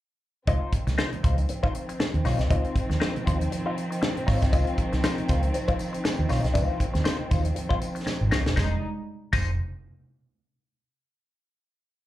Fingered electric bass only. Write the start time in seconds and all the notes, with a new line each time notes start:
0.48 C#2
0.87 C2
1.24 C#2
2.14 D#2
2.25 B1
2.39 C2
2.51 C#2
2.90 D#2
3.27 D#2
4.28 G#1
4.43 C2
4.53 C#2
4.93 C2
5.29 C#2
6.19 D#2
6.30 B1
6.44 C2
6.55 C#2
6.95 D#2
7.32 D#2
8.21 G#1
8.32 C2
8.46 E1
8.57 F1
9.33 F1